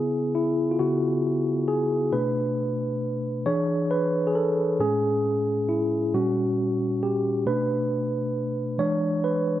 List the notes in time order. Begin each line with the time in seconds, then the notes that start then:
Already playing: C#3 B3 E4 G#4
0.35 E4
0.71 F4
0.79 C#3 B3 E4 F#4
1.68 G#4
2.12 B2 A3 D4 B4
3.46 E3 D4 G#4 C#5
3.91 B4
4.27 G#4
4.35 A4
4.79 A2 G#3 C#4 G#4
5.69 E4
6.14 A#2 G3 C#4 F#4
7.03 G4
7.46 B2 A3 D4 B4
8.78 E3 G#3 D4 C#5
9.24 B4